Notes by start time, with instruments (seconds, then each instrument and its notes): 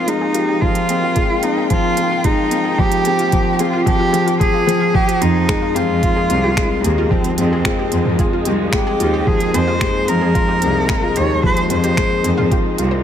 Already playing: grand piano F3 G#3 C4 F4 G4, string section F3 G#3 A#3 D#4
0.07 grand piano G#3, cello D#4, closed hi-hat
0.21 synth arpeggio sound G#4
0.34 synth arpeggio sound F4, grand piano G4, closed hi-hat
0.41 string section G5
0.49 synth arpeggio sound G4
0.61 grand piano F3, cello F4, kick
0.75 closed hi-hat
0.89 grand piano C4, synth arpeggio sound G#4, closed hi-hat
1.04 synth arpeggio sound F4
1.16 grand piano G#3, synth arpeggio sound G4, kick, closed hi-hat
1.43 grand piano C4, cello D#4, closed hi-hat
1.58 synth arpeggio sound G#4
1.70 grand piano F3, cello F4, kick, closed hi-hat
1.97 grand piano C4, synth arpeggio sound G#4, closed hi-hat
2.11 synth arpeggio sound F4
2.24 grand piano G#3, cello D#4, synth arpeggio sound G4, kick, closed hi-hat
2.51 grand piano C4, closed hi-hat
2.65 synth arpeggio sound G#4
2.78 grand piano F3, cello G4, kick
2.92 closed hi-hat
3.05 grand piano C4, synth arpeggio sound G#4, closed hi-hat
3.19 synth arpeggio sound F4, closed hi-hat
3.32 grand piano F3, kick, closed hi-hat
3.53 cello G4
3.59 grand piano C4, cello F4, synth arpeggio sound G#4, closed hi-hat
3.73 synth arpeggio sound F4
3.86 grand piano F3, cello G4, synth arpeggio sound G#4, kick, closed hi-hat
3.99 synth arpeggio sound F4
4.13 grand piano F3, synth arpeggio sound G#4, closed hi-hat
4.26 synth arpeggio sound F4, closed hi-hat
4.40 grand piano F3, synth arpeggio sound G#4, cello G#4, kick, closed hi-hat
4.54 synth arpeggio sound F4
4.67 grand piano F3, synth arpeggio sound G#4, closed hi-hat
4.80 synth arpeggio sound F4
4.94 grand piano F3, string section F3, synth arpeggio sound F4, cello G4, kick
5.07 synth arpeggio sound G4, closed hi-hat
5.21 cello section F2, grand piano C4, cello D#4, string section D#4, closed hi-hat
5.28 string section A#3
5.39 string section G#3
5.49 grand piano G#3, synth arpeggio sound G#4, finger snap, kick, closed hi-hat
5.62 synth arpeggio sound F4
5.74 cello section F2, grand piano C4, cello F4, synth arpeggio sound G4, closed hi-hat
5.89 cello section F2
6.03 grand piano F4, kick, closed hi-hat
6.16 synth arpeggio sound G#4
6.30 cello section C2, grand piano C4, synth arpeggio sound F4, closed hi-hat
6.44 synth arpeggio sound G4
6.57 grand piano G#3, finger snap, kick, closed hi-hat
6.82 cello section D#2, cello A#3, grand piano G4, synth arpeggio sound G#4, closed hi-hat
6.98 synth arpeggio sound F4
7.10 grand piano F3, cello C4, synth arpeggio sound G4, kick
7.24 closed hi-hat
7.38 cello section F2, cello C4, grand piano C4, closed hi-hat
7.53 synth arpeggio sound G#4
7.65 grand piano G#3, synth arpeggio sound F4, finger snap, kick, closed hi-hat
7.79 synth arpeggio sound G4
7.92 cello section F2, grand piano C4, closed hi-hat
8.05 cello section F2, mid tom
8.19 grand piano F4, synth arpeggio sound G#4, kick, closed hi-hat
8.33 synth arpeggio sound F4
8.45 cello section C2, grand piano C4, synth arpeggio sound G4, closed hi-hat
8.73 grand piano G#3, cello G4, finger snap, kick, closed hi-hat
8.87 synth arpeggio sound G#4
9.00 cello section D#2, synth arpeggio sound F4, grand piano G4, closed hi-hat
9.14 synth arpeggio sound G4
9.27 grand piano F3, cello G#4, kick
9.40 closed hi-hat
9.54 cello section F2, grand piano C4, synth arpeggio sound G#4, cello C5, closed hi-hat
9.68 synth arpeggio sound F4
9.81 grand piano G#3, synth arpeggio sound G4, finger snap, kick, closed hi-hat
10.08 cello section F2, grand piano C4, cello A#4, closed hi-hat
10.21 cello section F2, synth arpeggio sound G#4
10.35 synth arpeggio sound F4, grand piano F4, kick, closed hi-hat
10.48 synth arpeggio sound G4
10.62 cello section C2, grand piano C4, closed hi-hat
10.89 grand piano G#3, synth arpeggio sound G#4, finger snap, kick, closed hi-hat
11.03 synth arpeggio sound F4
11.16 cello section D#2, grand piano G4, synth arpeggio sound G4, cello C#5, closed hi-hat
11.43 grand piano F3, cello C5, kick
11.57 synth arpeggio sound G#4, closed hi-hat
11.70 cello section F2, grand piano C4, synth arpeggio sound F4, cello C5, closed hi-hat
11.84 synth arpeggio sound G4, closed hi-hat
11.97 grand piano G#3, finger snap, kick, closed hi-hat
12.24 cello section F2, grand piano C4, synth arpeggio sound G#4, closed hi-hat
12.37 cello section F2, synth arpeggio sound F4, mid tom
12.51 grand piano F4, synth arpeggio sound G4, kick, closed hi-hat
12.78 cello section C2, grand piano F4, closed hi-hat
12.91 synth arpeggio sound C5